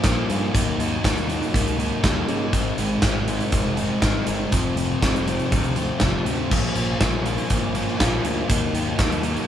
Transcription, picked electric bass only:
0.04 A#1
0.30 G2
0.55 D#2
0.78 D#2
1.04 D#2
1.54 C#2
2.04 D#2
2.28 C#3
2.53 G#1
2.77 G#1
3.03 G#1
3.52 F1
4.03 G#1
4.28 G1
4.53 F1
4.76 F1
5.03 F1
5.52 D2
6.01 F1
6.25 D2
6.51 A#1
6.76 A#1
7.01 A#1
7.51 G1
8.01 A#1
8.24 D2
8.50 D#2
8.73 D#2
8.99 D#2

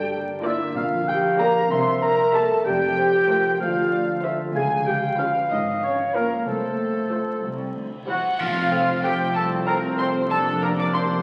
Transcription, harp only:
Already playing: G2 D4 D5
0.00 D3
0.14 A#3
0.29 D4
0.45 F4
0.61 A#4
0.76 A#2
0.92 F3
1.08 A#3
1.24 D4
1.71 C3
1.87 G3
2.03 A#3
2.19 E4
2.34 G4
2.50 A#4
2.66 F3
2.82 C4
2.98 F4
3.13 A4
3.29 C5
3.45 F5
3.60 D3
3.76 A3
3.92 C4
4.08 F4
4.24 A4
4.39 C5
4.55 C#3
4.71 G#3
4.87 B3
5.03 F4
5.18 C#5
5.34 B4
5.50 F5
5.67 C#6
5.82 F5
5.99 C#5
6.14 B3
6.31 G#3
6.46 C3
6.63 C4
6.79 A3
6.95 F4
7.11 A4
7.27 F4
7.43 C3
7.59 G3
7.75 C4
7.91 E4
8.07 G4
8.23 C5
8.39 F3
9.35 F5
9.67 A5
10.30 F3
10.62 D4
10.93 A#4

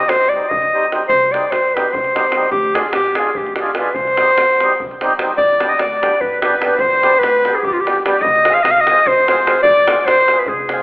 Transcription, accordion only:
0.33 G3 C4 D#4 G4
0.73 G3 C4 D#4 G4
0.93 G3 C4 D#4 G4
1.33 G3 C4 D#4 G4
1.76 G3 C4 D#4 G4
2.15 G3 C4 D#4 G4
2.35 G3 C4 D#4 G4
2.75 G#3 D4 F4 G#4
3.17 G#3 D4 F4 G#4
3.59 G#3 D4 F4 G#4
3.78 G#3 D4 F4 G#4
4.18 G3 C4 D#4 G4
4.61 G3 C4 D#4 G4
5.01 G3 C4 D#4 G4
5.21 G3 C4 D#4 G4
5.61 G3 B3 D4 G4
6.02 G3 B3 D4 G4
6.42 G3 B3 D4 G4
6.63 G3 B3 D4 G4
7.01 G3 B3 D4 G4
7.45 G3 B3 D4 G4
7.85 G3 B3 D4 G4
8.05 G3 B3 D4 G4
8.48 G#3 C4 F4 G#4
8.90 G#3 C4 F4 G#4
9.29 G#3 C4 F4 G#4
9.45 G#3 C4 F4 G#4
9.88 G#3 C4 F4 G#4
10.31 G#3 C4 F4 G#4
10.72 G#3 C4 F4 G#4

